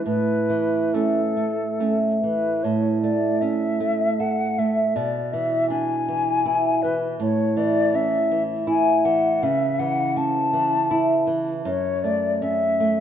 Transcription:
0.06 nylon-string guitar A2, flute B4
0.50 nylon-string guitar E3
0.94 nylon-string guitar A3 C#4, flute A4
1.37 nylon-string guitar A3
1.80 nylon-string guitar A3 C#4
2.21 nylon-string guitar E3, flute B4
2.63 nylon-string guitar A2, flute C#5
3.02 nylon-string guitar A3, flute D5
3.41 nylon-string guitar C#4, flute E5
3.80 nylon-string guitar A3
4.20 nylon-string guitar A4, flute F#5
4.58 nylon-string guitar A3, flute E5
4.96 nylon-string guitar B2, flute D5
5.33 nylon-string guitar E3, flute E5
5.70 nylon-string guitar D4, flute G#5
6.08 nylon-string guitar E3
6.46 nylon-string guitar E4
6.82 nylon-string guitar E3, flute B4
7.20 nylon-string guitar A2, flute C#5
7.57 nylon-string guitar E3, flute D5
7.94 nylon-string guitar C#4, flute E5
8.31 nylon-string guitar E3
8.67 nylon-string guitar E4, flute G#5
9.05 nylon-string guitar E3, flute F#5
9.43 nylon-string guitar C#3, flute E5
9.79 nylon-string guitar E3, flute F#5
10.16 nylon-string guitar C#4, flute A5
10.53 nylon-string guitar E3
10.91 nylon-string guitar E4
11.27 nylon-string guitar E3
11.65 nylon-string guitar F#2, flute C#5
12.03 nylon-string guitar A3, flute D5
12.42 nylon-string guitar C#4, flute E5
12.80 nylon-string guitar A3

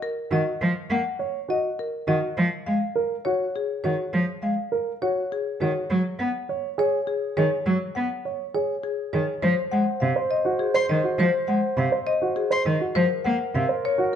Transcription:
0.02 marimba A#4
0.31 cello D#3, grand piano F#4, marimba D#5
0.61 cello F3
0.90 cello A#3, marimba F#5
1.19 grand piano C#5
1.49 grand piano F#4, marimba D#5
1.79 marimba A#4
2.07 cello D#3, grand piano F#4, marimba D#5
2.37 cello F3
2.66 cello G#3, marimba F5
2.96 grand piano A#4
3.25 grand piano F#4, marimba C#5
3.56 marimba G#4
3.84 cello D#3, grand piano F#4, marimba C#5
4.13 cello F3
4.42 cello G#3, marimba F5
4.72 grand piano A#4
5.02 grand piano F#4, marimba C#5
5.32 marimba G#4
5.61 cello D#3, grand piano F#4, marimba C#5
5.90 cello F#3
6.19 cello B3, marimba F#5
6.49 grand piano C#5
6.78 grand piano G#4, marimba C#5
7.07 marimba G#4
7.37 cello D#3, grand piano G#4, marimba C#5
7.66 cello F#3
7.95 cello B3, marimba F#5
8.25 grand piano C#5
8.54 grand piano G#4, marimba C#5
8.83 marimba G#4
9.13 cello D#3, grand piano G#4, marimba C#5
9.42 cello F3, clarinet C5, marimba C5
9.72 cello G#3, marimba F#5
10.00 cello C3, marimba F5
10.16 grand piano C5
10.31 marimba D#5
10.45 grand piano F#4
10.59 marimba G#4
10.74 grand piano C5, violin C6
10.89 cello D#3, marimba D#5
11.03 grand piano F#4
11.19 cello F3, marimba C5
11.48 cello G#3, marimba F#5
11.77 cello C3, marimba F5
11.92 grand piano C5
12.07 marimba D#5
12.22 grand piano F#4
12.36 marimba G#4
12.51 grand piano C5, violin C6
12.65 cello D#3, marimba D#5
12.80 grand piano F#4
12.95 cello F3, clarinet A#4, marimba C5
13.25 cello A#3, marimba F#5
13.55 cello C3, marimba F5
13.69 grand piano C5
13.85 marimba C#5
13.98 grand piano F#4

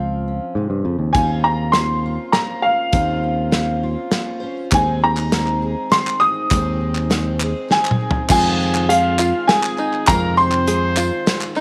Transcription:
Already playing: picked electric bass C#2, steel-string acoustic guitar F3 C4 F4, upright piano F5
0.28 steel-string acoustic guitar C#4
0.55 picked electric bass G#2, steel-string acoustic guitar C3
0.70 picked electric bass G2
0.85 picked electric bass F2, steel-string acoustic guitar C#3
0.99 picked electric bass D#2
1.13 picked electric bass D#2, steel-string acoustic guitar D#2 C4, twelve-string acoustic guitar D#3 A#3 F4 C5, upright piano G#5, kick, closed hi-hat
1.17 steel-string acoustic guitar C#4 F4
1.44 steel-string acoustic guitar C#4, upright piano A#5
1.72 steel-string acoustic guitar F3, twelve-string acoustic guitar A#3 F4, upright piano C6, snare, closed hi-hat
1.77 twelve-string acoustic guitar C5
2.06 steel-string acoustic guitar F4
2.32 steel-string acoustic guitar F3, twelve-string acoustic guitar A#3 F4 C5, upright piano A#5, snare, closed hi-hat
2.62 steel-string acoustic guitar C#4, upright piano F5
2.92 picked electric bass D#2, steel-string acoustic guitar D#2 C4 C#4 F4, twelve-string acoustic guitar D#3 A#3 F4 C5, kick, closed hi-hat
3.23 steel-string acoustic guitar C#4
3.51 steel-string acoustic guitar F3, twelve-string acoustic guitar A#3 F4 C5, snare, closed hi-hat
3.83 steel-string acoustic guitar F4
4.11 steel-string acoustic guitar F3, twelve-string acoustic guitar A#3 C#4 F4 C5, snare, closed hi-hat
4.40 steel-string acoustic guitar C#4, twelve-string acoustic guitar C#4 F4 C5
4.71 steel-string acoustic guitar D#2 C4 D#4 G#4, picked electric bass D#2, twelve-string acoustic guitar D#3 G#3 C4 C5, upright piano G#5, kick, clap, closed hi-hat
5.02 steel-string acoustic guitar C4, upright piano A#5
5.17 steel-string acoustic guitar D#4, clap
5.30 twelve-string acoustic guitar D#3 G#3 C4 C5, steel-string acoustic guitar D#3, snare, closed hi-hat
5.46 clap
5.62 steel-string acoustic guitar G#4
5.90 twelve-string acoustic guitar D#3 G#3 C4 C5, steel-string acoustic guitar D#3, upright piano C6, snare, closed hi-hat
6.07 clap
6.20 steel-string acoustic guitar D#4, upright piano D#6, clap
6.50 steel-string acoustic guitar D#2 C4 D#4 G#4, picked electric bass D#2, twelve-string acoustic guitar D#3 G#3 C4 C5, kick, clap, closed hi-hat
6.81 steel-string acoustic guitar D#4
6.95 clap
7.09 twelve-string acoustic guitar D#3 G#3 C4 C5, steel-string acoustic guitar D#3, snare, clap, closed hi-hat
7.39 twelve-string acoustic guitar G#3 C4 C5, steel-string acoustic guitar G#4, clap
7.68 twelve-string acoustic guitar D#3 G#3 C4 C5, steel-string acoustic guitar D#3, trumpet G#4, upright piano G#5, snare
7.85 clap
7.91 mid tom
8.01 steel-string acoustic guitar D#4
8.11 floor tom
8.29 twelve-string acoustic guitar F2 C3 D#3 G#3 C4 F4, picked electric bass F2, five-string banjo F4, trumpet G#4, upright piano G#5, kick, clap, crash, tambourine
8.60 tambourine
8.75 clap
8.89 twelve-string acoustic guitar D#3 G#3 C4 F4, trumpet F4, five-string banjo G#4, upright piano F5, closed hi-hat
9.19 five-string banjo F4, clap, tambourine
9.47 twelve-string acoustic guitar D#3 G#3 C4 F4, trumpet G#4, upright piano G#5, snare, closed hi-hat, tambourine
9.63 clap, tambourine
9.78 five-string banjo D#4, clap, tambourine
9.93 clap
10.07 twelve-string acoustic guitar F2 C3 D#3 G#3 C4 F4, picked electric bass F2, five-string banjo F4, trumpet A#4, upright piano A#5, kick, clap, closed hi-hat, tambourine
10.37 trumpet C5, upright piano C6, tambourine
10.52 clap
10.66 twelve-string acoustic guitar D#3 G#3 C4 F4, five-string banjo G#4, closed hi-hat
10.97 five-string banjo F4, clap, tambourine
11.26 twelve-string acoustic guitar D#3 G#3 C4 F4, snare, closed hi-hat, tambourine
11.41 clap, tambourine
11.56 five-string banjo D#4, clap, tambourine

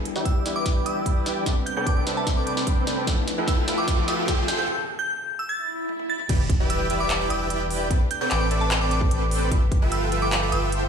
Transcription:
Already playing: string section D3 G3 E4 G4 B4, tine electric piano G3 B3 D4 E4, riser
0.05 closed hi-hat
0.16 supersaw synth E4 G4 B4 D5 G5, snare
0.25 synth bell E6, kick, closed hi-hat
0.44 tine electric piano G3 B3 D4 E4, supersaw synth E4 G4 B4 D5 E5, snare, closed hi-hat
0.56 synth bell D6
0.66 kick, snare, closed hi-hat
0.76 supersaw synth E4 G4 B4 D5 G5
0.86 synth bell E6, closed hi-hat
1.06 supersaw synth E4 G4 B4 D5 G5, kick, closed hi-hat
1.26 snare, closed hi-hat
1.44 string section C3 A3 D4, tine electric piano G3 B3 C4, supersaw synth C4 A4 B4 D5 G5, kick, snare, closed hi-hat
1.48 tine electric piano D4
1.66 synth bell G6, closed hi-hat
1.77 supersaw synth C4 A4 B4 D5 G5, synth bell G6
1.86 synth bell D6, kick, closed hi-hat
1.97 synth bell D6
2.05 tine electric piano G3 C4 B4, supersaw synth C4 A4 B4 D5 E5, snare, closed hi-hat
2.09 tine electric piano D4
2.17 synth bell A5
2.27 kick, snare, closed hi-hat
2.37 supersaw synth C4 A4 B4 D5 G5, synth bell D6
2.47 synth bell D6, closed hi-hat
2.57 snare
2.67 supersaw synth C4 A4 B4 D5 G5, kick, closed hi-hat
2.87 snare, closed hi-hat
3.06 tine electric piano F3 A3 B3, string section F3 E4 G4, supersaw synth F4 A4 B4 E5 G5, kick, snare, closed hi-hat
3.10 tine electric piano E4
3.28 snare, closed hi-hat
3.38 supersaw synth F4 A4 B4 E5 G5
3.47 synth bell E6, kick, snare, closed hi-hat
3.66 tine electric piano F3 A3 B3 E4, supersaw synth F4 A4 B4 E5 G5, snare, closed hi-hat
3.78 synth bell D6
3.88 kick, snare, closed hi-hat
3.98 supersaw synth F4 A4 B4 E5 G5
4.08 synth bell E6, snare, closed hi-hat
4.28 supersaw synth F4 A4 C5 E5 G5, kick, snare, closed hi-hat
4.48 string section C4 E4, synth bell G6, snare, closed hi-hat
4.58 synth bell G6
4.99 synth bell G6
5.39 synth bell E6
5.49 synth bell A6, swell
5.89 high tom
5.99 high tom
6.10 synth bell A6
6.19 mid tom
6.29 sub bass E1, string section E3 G3 B3 D4 G4, supersaw synth E4 G4 B4 D5 G5, kick, closed hi-hat, crash, impact
6.50 kick, closed hi-hat
6.60 supersaw synth E4 G4 B4 D5 G5
6.70 synth bell E6, closed hi-hat
6.90 supersaw synth E4 G4 B4 D5 E5, closed hi-hat
7.00 synth bell D6
7.10 clap, closed hi-hat
7.20 supersaw synth E4 G4 B4 D5 G5
7.30 sub bass E1, synth bell E6, closed hi-hat
7.50 supersaw synth E4 G4 B4 D5 G5, closed hi-hat
7.71 open hi-hat
7.90 string section C3 A3 B4, supersaw synth C4 A4 B4 D5 G5, kick, closed hi-hat
8.11 synth bell G6, closed hi-hat
8.21 supersaw synth C4 A4 B4 D5 G5, synth bell G6
8.31 sub bass A1, synth bell D6, clap, closed hi-hat
8.41 synth bell D6
8.51 supersaw synth C4 A4 B4 D5 E5, closed hi-hat
8.61 synth bell A5
8.71 clap, closed hi-hat
8.81 supersaw synth C4 A4 B4 D5 G5, synth bell D6
8.91 synth bell D6, closed hi-hat
9.01 kick
9.11 sub bass A1, supersaw synth C4 A4 B4 D5 G5, closed hi-hat
9.31 open hi-hat
9.51 sub bass G1, string section F3 E5, supersaw synth F4 A4 B4 E5 G5, kick, closed hi-hat
9.72 kick, closed hi-hat
9.82 supersaw synth F4 A4 B4 E5 G5
9.92 synth bell E6, closed hi-hat
10.12 supersaw synth F4 A4 B4 E5 G5, closed hi-hat
10.22 synth bell D6
10.32 clap, closed hi-hat
10.42 supersaw synth F4 A4 B4 E5 G5
10.52 sub bass G1, synth bell E6, closed hi-hat
10.72 supersaw synth F4 A4 C5 E5 G5, closed hi-hat

